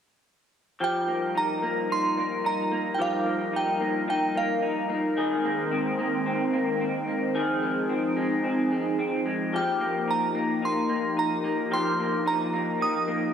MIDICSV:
0, 0, Header, 1, 4, 480
1, 0, Start_track
1, 0, Key_signature, -3, "major"
1, 0, Tempo, 545455
1, 708, Time_signature, 4, 2, 24, 8
1, 11735, End_track
2, 0, Start_track
2, 0, Title_t, "Synth bell"
2, 0, Program_c, 0, 98
2, 738, Note_on_c, 0, 79, 78
2, 1210, Note_on_c, 0, 82, 81
2, 1217, Note_off_c, 0, 79, 0
2, 1690, Note_on_c, 0, 84, 87
2, 1693, Note_off_c, 0, 82, 0
2, 2166, Note_on_c, 0, 82, 73
2, 2174, Note_off_c, 0, 84, 0
2, 2588, Note_off_c, 0, 82, 0
2, 2591, Note_on_c, 0, 79, 48
2, 2641, Note_off_c, 0, 79, 0
2, 2654, Note_on_c, 0, 77, 70
2, 3135, Note_off_c, 0, 77, 0
2, 3136, Note_on_c, 0, 79, 71
2, 3597, Note_off_c, 0, 79, 0
2, 3607, Note_on_c, 0, 79, 69
2, 3845, Note_off_c, 0, 79, 0
2, 3849, Note_on_c, 0, 77, 66
2, 4286, Note_off_c, 0, 77, 0
2, 8411, Note_on_c, 0, 79, 66
2, 8893, Note_on_c, 0, 82, 71
2, 8894, Note_off_c, 0, 79, 0
2, 9328, Note_off_c, 0, 82, 0
2, 9373, Note_on_c, 0, 84, 73
2, 9846, Note_on_c, 0, 82, 70
2, 9855, Note_off_c, 0, 84, 0
2, 10326, Note_on_c, 0, 84, 83
2, 10331, Note_off_c, 0, 82, 0
2, 10801, Note_on_c, 0, 82, 79
2, 10812, Note_off_c, 0, 84, 0
2, 11284, Note_on_c, 0, 87, 75
2, 11289, Note_off_c, 0, 82, 0
2, 11723, Note_off_c, 0, 87, 0
2, 11735, End_track
3, 0, Start_track
3, 0, Title_t, "Analog synth pad"
3, 0, Program_c, 1, 89
3, 706, Note_on_c, 1, 63, 56
3, 706, Note_on_c, 1, 70, 74
3, 707, Note_on_c, 1, 65, 61
3, 709, Note_on_c, 1, 55, 63
3, 4513, Note_off_c, 1, 65, 0
3, 4514, Note_off_c, 1, 55, 0
3, 4545, Note_on_c, 1, 51, 70
3, 4546, Note_on_c, 1, 56, 59
3, 4548, Note_on_c, 1, 60, 60
3, 6432, Note_off_c, 1, 63, 0
3, 6432, Note_off_c, 1, 70, 0
3, 6448, Note_off_c, 1, 51, 0
3, 6448, Note_off_c, 1, 56, 0
3, 6472, Note_on_c, 1, 53, 65
3, 6473, Note_on_c, 1, 68, 77
3, 6476, Note_on_c, 1, 63, 64
3, 8353, Note_off_c, 1, 60, 0
3, 8372, Note_off_c, 1, 68, 0
3, 8373, Note_off_c, 1, 63, 0
3, 8385, Note_on_c, 1, 63, 62
3, 8387, Note_on_c, 1, 58, 64
3, 8388, Note_on_c, 1, 67, 76
3, 11735, Note_off_c, 1, 53, 0
3, 11735, Note_off_c, 1, 58, 0
3, 11735, Note_off_c, 1, 63, 0
3, 11735, Note_off_c, 1, 67, 0
3, 11735, End_track
4, 0, Start_track
4, 0, Title_t, "Clean electric guitar"
4, 0, Program_c, 2, 27
4, 706, Note_on_c, 2, 53, 65
4, 710, Note_on_c, 2, 67, 51
4, 949, Note_on_c, 2, 58, 45
4, 1189, Note_on_c, 2, 63, 48
4, 1426, Note_off_c, 2, 58, 0
4, 1429, Note_on_c, 2, 58, 48
4, 1668, Note_off_c, 2, 63, 0
4, 1671, Note_on_c, 2, 63, 46
4, 1909, Note_off_c, 2, 58, 0
4, 1913, Note_on_c, 2, 58, 51
4, 2147, Note_off_c, 2, 63, 0
4, 2150, Note_on_c, 2, 63, 46
4, 2387, Note_off_c, 2, 58, 0
4, 2391, Note_on_c, 2, 58, 44
4, 2618, Note_off_c, 2, 53, 0
4, 2624, Note_off_c, 2, 67, 0
4, 2629, Note_on_c, 2, 53, 63
4, 2635, Note_on_c, 2, 67, 52
4, 2865, Note_off_c, 2, 58, 0
4, 2869, Note_on_c, 2, 58, 47
4, 3103, Note_off_c, 2, 63, 0
4, 3107, Note_on_c, 2, 63, 50
4, 3346, Note_off_c, 2, 58, 0
4, 3350, Note_on_c, 2, 58, 49
4, 3586, Note_off_c, 2, 63, 0
4, 3590, Note_on_c, 2, 63, 50
4, 3827, Note_off_c, 2, 58, 0
4, 3830, Note_on_c, 2, 58, 52
4, 4066, Note_off_c, 2, 63, 0
4, 4069, Note_on_c, 2, 63, 47
4, 4306, Note_off_c, 2, 58, 0
4, 4309, Note_on_c, 2, 58, 48
4, 4547, Note_off_c, 2, 53, 0
4, 4550, Note_on_c, 2, 51, 67
4, 4552, Note_off_c, 2, 67, 0
4, 4555, Note_on_c, 2, 68, 56
4, 4788, Note_off_c, 2, 58, 0
4, 4792, Note_on_c, 2, 58, 48
4, 5026, Note_off_c, 2, 63, 0
4, 5029, Note_on_c, 2, 60, 48
4, 5260, Note_off_c, 2, 58, 0
4, 5270, Note_on_c, 2, 58, 48
4, 5505, Note_off_c, 2, 60, 0
4, 5508, Note_on_c, 2, 60, 50
4, 5738, Note_off_c, 2, 58, 0
4, 5749, Note_on_c, 2, 58, 53
4, 5984, Note_off_c, 2, 60, 0
4, 5988, Note_on_c, 2, 60, 45
4, 6216, Note_off_c, 2, 58, 0
4, 6226, Note_on_c, 2, 58, 42
4, 6464, Note_off_c, 2, 51, 0
4, 6467, Note_on_c, 2, 51, 69
4, 6469, Note_off_c, 2, 68, 0
4, 6472, Note_on_c, 2, 68, 54
4, 6515, Note_off_c, 2, 58, 0
4, 6708, Note_on_c, 2, 56, 48
4, 6943, Note_off_c, 2, 60, 0
4, 6946, Note_on_c, 2, 60, 44
4, 7176, Note_off_c, 2, 56, 0
4, 7186, Note_on_c, 2, 56, 48
4, 7417, Note_off_c, 2, 60, 0
4, 7428, Note_on_c, 2, 60, 47
4, 7658, Note_off_c, 2, 56, 0
4, 7668, Note_on_c, 2, 56, 49
4, 7899, Note_off_c, 2, 60, 0
4, 7910, Note_on_c, 2, 60, 49
4, 8136, Note_off_c, 2, 56, 0
4, 8147, Note_on_c, 2, 56, 49
4, 8384, Note_off_c, 2, 51, 0
4, 8388, Note_on_c, 2, 53, 67
4, 8390, Note_off_c, 2, 68, 0
4, 8394, Note_on_c, 2, 67, 54
4, 8436, Note_off_c, 2, 56, 0
4, 8437, Note_off_c, 2, 60, 0
4, 8626, Note_on_c, 2, 58, 49
4, 8868, Note_on_c, 2, 63, 49
4, 9104, Note_off_c, 2, 58, 0
4, 9107, Note_on_c, 2, 58, 49
4, 9344, Note_off_c, 2, 63, 0
4, 9348, Note_on_c, 2, 63, 49
4, 9583, Note_off_c, 2, 58, 0
4, 9587, Note_on_c, 2, 58, 48
4, 9825, Note_off_c, 2, 63, 0
4, 9828, Note_on_c, 2, 63, 46
4, 10064, Note_off_c, 2, 58, 0
4, 10068, Note_on_c, 2, 58, 46
4, 10297, Note_off_c, 2, 53, 0
4, 10301, Note_off_c, 2, 67, 0
4, 10308, Note_on_c, 2, 53, 66
4, 10311, Note_on_c, 2, 67, 53
4, 10545, Note_off_c, 2, 58, 0
4, 10549, Note_on_c, 2, 58, 46
4, 10785, Note_off_c, 2, 63, 0
4, 10788, Note_on_c, 2, 63, 49
4, 11026, Note_off_c, 2, 58, 0
4, 11030, Note_on_c, 2, 58, 48
4, 11265, Note_off_c, 2, 63, 0
4, 11268, Note_on_c, 2, 63, 50
4, 11504, Note_off_c, 2, 58, 0
4, 11507, Note_on_c, 2, 58, 56
4, 11735, Note_off_c, 2, 53, 0
4, 11735, Note_off_c, 2, 58, 0
4, 11735, Note_off_c, 2, 63, 0
4, 11735, Note_off_c, 2, 67, 0
4, 11735, End_track
0, 0, End_of_file